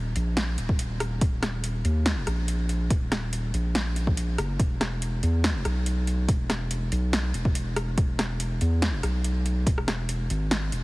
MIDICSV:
0, 0, Header, 1, 3, 480
1, 0, Start_track
1, 0, Tempo, 422535
1, 1380, Time_signature, 4, 2, 24, 8
1, 12309, End_track
2, 0, Start_track
2, 0, Title_t, "Sub bass"
2, 0, Program_c, 0, 38
2, 0, Note_on_c, 0, 27, 90
2, 162, Note_off_c, 0, 27, 0
2, 181, Note_on_c, 0, 34, 97
2, 643, Note_off_c, 0, 34, 0
2, 660, Note_on_c, 0, 27, 94
2, 1362, Note_off_c, 0, 27, 0
2, 1379, Note_on_c, 0, 27, 96
2, 2081, Note_off_c, 0, 27, 0
2, 2099, Note_on_c, 0, 39, 94
2, 2562, Note_off_c, 0, 39, 0
2, 2580, Note_on_c, 0, 34, 94
2, 3282, Note_off_c, 0, 34, 0
2, 3300, Note_on_c, 0, 27, 94
2, 4002, Note_off_c, 0, 27, 0
2, 4021, Note_on_c, 0, 34, 95
2, 4963, Note_off_c, 0, 34, 0
2, 4981, Note_on_c, 0, 30, 99
2, 5202, Note_off_c, 0, 30, 0
2, 5221, Note_on_c, 0, 28, 95
2, 5922, Note_off_c, 0, 28, 0
2, 5941, Note_on_c, 0, 40, 95
2, 6402, Note_off_c, 0, 40, 0
2, 6419, Note_on_c, 0, 35, 97
2, 7121, Note_off_c, 0, 35, 0
2, 7140, Note_on_c, 0, 28, 95
2, 7842, Note_off_c, 0, 28, 0
2, 7859, Note_on_c, 0, 35, 98
2, 8321, Note_off_c, 0, 35, 0
2, 8338, Note_on_c, 0, 28, 95
2, 9041, Note_off_c, 0, 28, 0
2, 9060, Note_on_c, 0, 28, 93
2, 9762, Note_off_c, 0, 28, 0
2, 9783, Note_on_c, 0, 40, 96
2, 10244, Note_off_c, 0, 40, 0
2, 10260, Note_on_c, 0, 35, 93
2, 10962, Note_off_c, 0, 35, 0
2, 10980, Note_on_c, 0, 28, 94
2, 11682, Note_off_c, 0, 28, 0
2, 11702, Note_on_c, 0, 32, 97
2, 12163, Note_off_c, 0, 32, 0
2, 12181, Note_on_c, 0, 28, 94
2, 12309, Note_off_c, 0, 28, 0
2, 12309, End_track
3, 0, Start_track
3, 0, Title_t, "Drums"
3, 178, Note_on_c, 9, 42, 52
3, 292, Note_off_c, 9, 42, 0
3, 418, Note_on_c, 9, 38, 119
3, 418, Note_on_c, 9, 42, 77
3, 532, Note_off_c, 9, 38, 0
3, 532, Note_off_c, 9, 42, 0
3, 658, Note_on_c, 9, 42, 52
3, 772, Note_off_c, 9, 42, 0
3, 785, Note_on_c, 9, 36, 101
3, 898, Note_off_c, 9, 36, 0
3, 898, Note_on_c, 9, 42, 76
3, 1011, Note_off_c, 9, 42, 0
3, 1140, Note_on_c, 9, 37, 57
3, 1140, Note_on_c, 9, 42, 50
3, 1253, Note_off_c, 9, 37, 0
3, 1253, Note_off_c, 9, 42, 0
3, 1379, Note_on_c, 9, 36, 126
3, 1379, Note_on_c, 9, 42, 75
3, 1493, Note_off_c, 9, 36, 0
3, 1493, Note_off_c, 9, 42, 0
3, 1620, Note_on_c, 9, 37, 54
3, 1620, Note_on_c, 9, 38, 64
3, 1620, Note_on_c, 9, 42, 50
3, 1733, Note_off_c, 9, 37, 0
3, 1733, Note_off_c, 9, 38, 0
3, 1733, Note_off_c, 9, 42, 0
3, 1860, Note_on_c, 9, 42, 76
3, 1973, Note_off_c, 9, 42, 0
3, 2100, Note_on_c, 9, 42, 50
3, 2213, Note_off_c, 9, 42, 0
3, 2338, Note_on_c, 9, 38, 122
3, 2338, Note_on_c, 9, 42, 74
3, 2451, Note_off_c, 9, 38, 0
3, 2451, Note_off_c, 9, 42, 0
3, 2578, Note_on_c, 9, 37, 53
3, 2578, Note_on_c, 9, 42, 52
3, 2692, Note_off_c, 9, 37, 0
3, 2692, Note_off_c, 9, 42, 0
3, 2818, Note_on_c, 9, 42, 76
3, 2932, Note_off_c, 9, 42, 0
3, 3059, Note_on_c, 9, 42, 47
3, 3172, Note_off_c, 9, 42, 0
3, 3300, Note_on_c, 9, 36, 123
3, 3300, Note_on_c, 9, 42, 69
3, 3413, Note_off_c, 9, 36, 0
3, 3413, Note_off_c, 9, 42, 0
3, 3541, Note_on_c, 9, 37, 55
3, 3541, Note_on_c, 9, 38, 64
3, 3541, Note_on_c, 9, 42, 51
3, 3655, Note_off_c, 9, 37, 0
3, 3655, Note_off_c, 9, 38, 0
3, 3655, Note_off_c, 9, 42, 0
3, 3781, Note_on_c, 9, 42, 74
3, 3894, Note_off_c, 9, 42, 0
3, 4022, Note_on_c, 9, 42, 49
3, 4135, Note_off_c, 9, 42, 0
3, 4260, Note_on_c, 9, 38, 117
3, 4260, Note_on_c, 9, 42, 73
3, 4374, Note_off_c, 9, 38, 0
3, 4374, Note_off_c, 9, 42, 0
3, 4501, Note_on_c, 9, 42, 48
3, 4615, Note_off_c, 9, 42, 0
3, 4625, Note_on_c, 9, 36, 105
3, 4739, Note_off_c, 9, 36, 0
3, 4741, Note_on_c, 9, 42, 74
3, 4855, Note_off_c, 9, 42, 0
3, 4980, Note_on_c, 9, 37, 60
3, 4980, Note_on_c, 9, 42, 48
3, 5094, Note_off_c, 9, 37, 0
3, 5094, Note_off_c, 9, 42, 0
3, 5220, Note_on_c, 9, 36, 121
3, 5222, Note_on_c, 9, 42, 73
3, 5334, Note_off_c, 9, 36, 0
3, 5335, Note_off_c, 9, 42, 0
3, 5463, Note_on_c, 9, 37, 55
3, 5463, Note_on_c, 9, 38, 60
3, 5463, Note_on_c, 9, 42, 49
3, 5576, Note_off_c, 9, 37, 0
3, 5576, Note_off_c, 9, 38, 0
3, 5576, Note_off_c, 9, 42, 0
3, 5702, Note_on_c, 9, 42, 73
3, 5816, Note_off_c, 9, 42, 0
3, 5941, Note_on_c, 9, 42, 50
3, 6054, Note_off_c, 9, 42, 0
3, 6181, Note_on_c, 9, 38, 118
3, 6181, Note_on_c, 9, 42, 72
3, 6295, Note_off_c, 9, 38, 0
3, 6295, Note_off_c, 9, 42, 0
3, 6420, Note_on_c, 9, 37, 55
3, 6420, Note_on_c, 9, 42, 49
3, 6533, Note_off_c, 9, 37, 0
3, 6533, Note_off_c, 9, 42, 0
3, 6660, Note_on_c, 9, 42, 75
3, 6774, Note_off_c, 9, 42, 0
3, 6900, Note_on_c, 9, 42, 49
3, 7014, Note_off_c, 9, 42, 0
3, 7140, Note_on_c, 9, 36, 117
3, 7141, Note_on_c, 9, 42, 78
3, 7253, Note_off_c, 9, 36, 0
3, 7254, Note_off_c, 9, 42, 0
3, 7380, Note_on_c, 9, 37, 52
3, 7380, Note_on_c, 9, 38, 59
3, 7380, Note_on_c, 9, 42, 52
3, 7494, Note_off_c, 9, 37, 0
3, 7494, Note_off_c, 9, 38, 0
3, 7494, Note_off_c, 9, 42, 0
3, 7620, Note_on_c, 9, 42, 75
3, 7734, Note_off_c, 9, 42, 0
3, 7860, Note_on_c, 9, 42, 50
3, 7974, Note_off_c, 9, 42, 0
3, 8101, Note_on_c, 9, 38, 112
3, 8101, Note_on_c, 9, 42, 75
3, 8215, Note_off_c, 9, 38, 0
3, 8215, Note_off_c, 9, 42, 0
3, 8341, Note_on_c, 9, 42, 51
3, 8454, Note_off_c, 9, 42, 0
3, 8465, Note_on_c, 9, 36, 101
3, 8579, Note_off_c, 9, 36, 0
3, 8580, Note_on_c, 9, 42, 78
3, 8693, Note_off_c, 9, 42, 0
3, 8820, Note_on_c, 9, 37, 59
3, 8820, Note_on_c, 9, 42, 51
3, 8934, Note_off_c, 9, 37, 0
3, 8934, Note_off_c, 9, 42, 0
3, 9061, Note_on_c, 9, 36, 114
3, 9061, Note_on_c, 9, 42, 77
3, 9174, Note_off_c, 9, 36, 0
3, 9175, Note_off_c, 9, 42, 0
3, 9303, Note_on_c, 9, 37, 51
3, 9303, Note_on_c, 9, 38, 59
3, 9303, Note_on_c, 9, 42, 56
3, 9417, Note_off_c, 9, 37, 0
3, 9417, Note_off_c, 9, 38, 0
3, 9417, Note_off_c, 9, 42, 0
3, 9542, Note_on_c, 9, 42, 78
3, 9655, Note_off_c, 9, 42, 0
3, 9781, Note_on_c, 9, 42, 54
3, 9895, Note_off_c, 9, 42, 0
3, 10022, Note_on_c, 9, 38, 114
3, 10022, Note_on_c, 9, 42, 80
3, 10136, Note_off_c, 9, 38, 0
3, 10136, Note_off_c, 9, 42, 0
3, 10262, Note_on_c, 9, 37, 51
3, 10262, Note_on_c, 9, 42, 53
3, 10376, Note_off_c, 9, 37, 0
3, 10376, Note_off_c, 9, 42, 0
3, 10502, Note_on_c, 9, 42, 80
3, 10615, Note_off_c, 9, 42, 0
3, 10743, Note_on_c, 9, 42, 53
3, 10857, Note_off_c, 9, 42, 0
3, 10980, Note_on_c, 9, 36, 115
3, 10983, Note_on_c, 9, 42, 80
3, 11094, Note_off_c, 9, 36, 0
3, 11097, Note_off_c, 9, 42, 0
3, 11108, Note_on_c, 9, 37, 55
3, 11222, Note_off_c, 9, 37, 0
3, 11222, Note_on_c, 9, 37, 50
3, 11222, Note_on_c, 9, 38, 59
3, 11222, Note_on_c, 9, 42, 55
3, 11336, Note_off_c, 9, 37, 0
3, 11336, Note_off_c, 9, 38, 0
3, 11336, Note_off_c, 9, 42, 0
3, 11461, Note_on_c, 9, 42, 81
3, 11575, Note_off_c, 9, 42, 0
3, 11703, Note_on_c, 9, 42, 55
3, 11816, Note_off_c, 9, 42, 0
3, 11942, Note_on_c, 9, 38, 110
3, 11942, Note_on_c, 9, 42, 81
3, 12055, Note_off_c, 9, 38, 0
3, 12055, Note_off_c, 9, 42, 0
3, 12181, Note_on_c, 9, 42, 55
3, 12295, Note_off_c, 9, 42, 0
3, 12309, End_track
0, 0, End_of_file